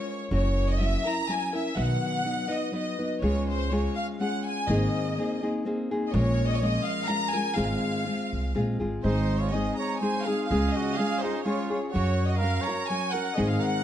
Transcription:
Already playing: nylon-string guitar G#3 C#4 F4 A#4, violin section C#5
0.31 upright bass F#1, nylon-string guitar F#3 C#4 E4 A#4, violin section C#5
0.70 violin section D#5
0.80 nylon-string guitar F#3 C#4 E4 A#4, violin section E5
1.05 nylon-string guitar C#4 E4 A#4, violin section A#5
1.28 nylon-string guitar F#3 C#4 E4 A#4, violin section G#5
1.53 nylon-string guitar C#4 E4 A#4, violin section E5
1.75 upright bass B1, nylon-string guitar B2 D#3 F#3 B3 D#4 B4, violin section F#5
2.24 nylon-string guitar F#3 B3 D#4 B4
2.48 nylon-string guitar F#3 B3 D#4 B4
2.52 violin section D#5
2.72 nylon-string guitar F#3 B3 D#4 B4
2.76 violin section D#5
2.99 nylon-string guitar F#3 B3 D#4 B4
3.22 upright bass C#2, nylon-string guitar C#3 G#3 C#4 F4 G#4, violin section C#5
3.50 violin section C5
3.71 nylon-string guitar G#3 C#4 F4 G#4, violin section C#5
3.97 violin section F5
4.20 nylon-string guitar G#3 C#4 F4 G#4, violin section F#5
4.46 violin section G#5
4.68 upright bass G#1, nylon-string guitar G#2 D#3 A#3 C4 D#4 G#4, violin section D#5
5.18 nylon-string guitar A#3 C4 D#4 G#4
5.43 nylon-string guitar A#3 C4 D#4 G#4
5.65 nylon-string guitar A#3 C4 D#4 G#4
5.91 nylon-string guitar A#3 C4 D#4 G#4
6.07 violin section D#5
6.13 upright bass A#1, nylon-string guitar A#2 F3 G#3 C#4 F4 A#4, violin section C#5
6.49 violin section D#5
6.56 violin section C#5
6.61 nylon-string guitar G#3 C#4 F4 A#4, violin section D#5
6.85 violin section F5
7.08 nylon-string guitar G#3 C#4 F4 A#4, violin section A#5
7.33 nylon-string guitar G#3 C#4 F4 A#4, violin section G#5
7.55 upright bass G#1, nylon-string guitar G#2 D#3 G#3 C4 F4 G#4, violin section F5
8.06 nylon-string guitar G#3 C4 F4 G#4
8.33 upright bass C2
8.55 upright bass A#1, nylon-string guitar G#3 C4 F4 G#4
8.80 upright bass G#1, nylon-string guitar G#3 C4 F4 G#4
9.04 upright bass G#1, nylon-string guitar G#2 D#3 G#3 C4 D#4 G#4, trumpet D#4, violin section C5
9.40 trumpet F4, violin section C#5
9.52 nylon-string guitar G#3 C4 D#4 G#4, trumpet G#4, violin section D#5
9.77 trumpet C#5, violin section A#5
10.00 nylon-string guitar G#3 C4 D#4 G#4, trumpet C5, violin section G#5
10.24 nylon-string guitar G#3 C4 D#4 G#4, trumpet G#4, violin section F5
10.47 upright bass C#2, nylon-string guitar C#3, trumpet G#4, violin section F5
10.52 nylon-string guitar G#3 C#4 F4 G#4
10.72 violin section D#5
10.77 trumpet F#4
10.96 nylon-string guitar G#3 C#4 F4, trumpet G#4, violin section F5
11.00 nylon-string guitar G#4
11.20 trumpet D#4, nylon-string guitar G#4, violin section C5
11.24 nylon-string guitar C#4 F4
11.42 nylon-string guitar G#3 C#4 G#4, trumpet F4, violin section C#5
11.47 nylon-string guitar F4
11.70 nylon-string guitar C#4 F4 G#4
11.90 nylon-string guitar F#3, trumpet F#4, violin section C#5
11.95 upright bass F#2, nylon-string guitar C#4 F#4 A#4
12.26 trumpet F#4, violin section D#5
12.37 trumpet A#4, violin section F5
12.42 nylon-string guitar F#3 C#4 F#4 A#4
12.62 trumpet C#5, violin section A#5
12.67 nylon-string guitar C#4 F#4 A#4
12.85 trumpet C#5, violin section G#5
12.90 nylon-string guitar F#3 C#4 F#4 A#4
13.12 nylon-string guitar C#4 F#4 A#4, trumpet A#4, violin section F#5
13.36 nylon-string guitar G#2 D#3 G#3 C4 D#4 G#4, upright bass G#2, trumpet G#4, violin section D#5
13.49 trumpet G#4, violin section F5
13.60 trumpet A#4, violin section F#5

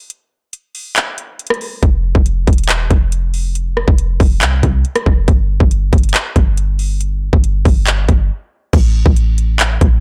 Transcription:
0.10 closed hi-hat
0.53 closed hi-hat
0.75 open hi-hat
0.96 clap, closed hi-hat
1.18 closed hi-hat
1.39 closed hi-hat
1.47 cross-stick, closed hi-hat
1.54 closed hi-hat
1.61 open hi-hat
1.83 808-style bass F1, kick, closed hi-hat
2.15 808-style bass F1, kick
2.26 closed hi-hat
2.47 808-style bass E1, kick, closed hi-hat
2.53 closed hi-hat
2.58 closed hi-hat
2.64 closed hi-hat
2.69 clap, closed hi-hat
2.91 808-style bass F1, kick, closed hi-hat
3.12 closed hi-hat
3.34 open hi-hat
3.55 closed hi-hat
3.77 cross-stick
3.88 808-style bass F1, kick
3.98 closed hi-hat
4.20 808-style bass F1, kick, open hi-hat
4.42 808-style bass C2, clap, closed hi-hat
4.63 808-style bass C2, kick, closed hi-hat
4.85 closed hi-hat
4.96 cross-stick, closed hi-hat
5.06 808-style bass F1, kick
5.28 808-style bass G1, kick, closed hi-hat
5.60 808-style bass G1, kick
5.71 closed hi-hat
5.93 808-style bass G1, kick, closed hi-hat
5.98 closed hi-hat
6.03 closed hi-hat
6.09 closed hi-hat
6.14 clap, closed hi-hat
6.36 808-style bass G1, kick, closed hi-hat
6.57 closed hi-hat
6.79 open hi-hat
7.01 closed hi-hat
7.33 808-style bass G1, kick
7.44 closed hi-hat
7.65 808-style bass G1, kick, open hi-hat
7.87 clap, closed hi-hat
8.09 808-style bass G1, kick, closed hi-hat
8.73 808-style bass A1, kick, closed hi-hat, crash
9.06 808-style bass A1, kick
9.16 closed hi-hat
9.38 closed hi-hat
9.60 clap, closed hi-hat
9.81 808-style bass A1, kick, closed hi-hat

